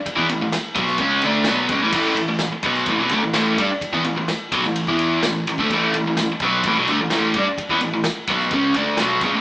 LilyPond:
<<
  \new Staff \with { instrumentName = "Overdriven electric guitar" } { \clef bass \time 4/4 \key a \major \tempo 4 = 128 r16 <e b>16 <a, e>16 <a, e>16 r8 <b, fis b>8 <cis gis cis'>8 <d a d'>8 <b, fis b>8 <cis gis>16 <a, e>16 | <a, e a>8 <a, e>16 <a, e>16 <a, e>16 r16 <b, fis b>8 <a, e>16 <b, fis>16 <d a>16 <a, e>16 <a, e a>8 <g d'>16 r16 | r16 <e b>16 <a, e>16 <a, e>16 r8 <b, fis>16 <a, e>8 <e b e'>8. <a, e>8 <a, e>16 <d a>16 | <a, e a>8 <a, e>16 <a, e>16 <a, e>16 r16 <b, fis b>8 <a, e>16 <b, fis>16 <d a>16 <a, e>16 <a, e a>8 <g d'>16 r16 |
r16 <e b>16 <a, e>16 <a, e>16 r8 <b, fis b>8 <cis gis cis'>8 <d a d'>8 <b, fis b>8 <cis gis>16 <a, e>16 | }
  \new Staff \with { instrumentName = "Picked electric bass" } { \clef bass \time 4/4 \key a \major r16 e,16 a,,16 a,,16 r8 b,,8 cis,8 d,8 b,,8 cis,16 a,,16 | a,,8 a,,16 a,,16 a,,16 r16 b,,8 a,,16 b,,16 d,16 a,,16 a,,8 g,16 r16 | r16 e,16 a,,16 a,,16 r8 b,,16 a,,8 e,8. a,,8 a,,16 d,16 | a,,8 a,,16 a,,16 a,,16 r16 b,,8 a,,16 b,,16 d,16 a,,16 a,,8 g,16 r16 |
r16 e,16 a,,16 a,,16 r8 b,,8 cis,8 d,8 b,,8 cis,16 a,,16 | }
  \new DrumStaff \with { instrumentName = "Drums" } \drummode { \time 4/4 <bd cymr>16 bd16 cymr8 <cymr sn>8 <bd cymr>16 sn16 <bd cymr>8 cymr8 <cymr sn>8 <bd cymr>8 | <cymc bd>8 cymr8 <cymr sn>8 <bd cymr>16 sn16 <bd cymr>8 cymr8 <cymr sn>8 <bd cymr>8 | <bd cymr>16 bd16 cymr8 <cymr sn>8 <bd cymr>16 sn16 cymr16 bd16 cymr8 <cymr sn>8 cymr16 bd16 | <bd cymr>8 cymr8 <cymr sn>8 <bd cymr>8 <bd cymr>8 cymr8 <cymr sn>8 <bd cymr>8 |
<bd cymr>16 bd16 cymr8 <cymr sn>8 <bd cymr>16 sn16 <bd cymr>8 cymr8 <cymr sn>8 <bd cymr>8 | }
>>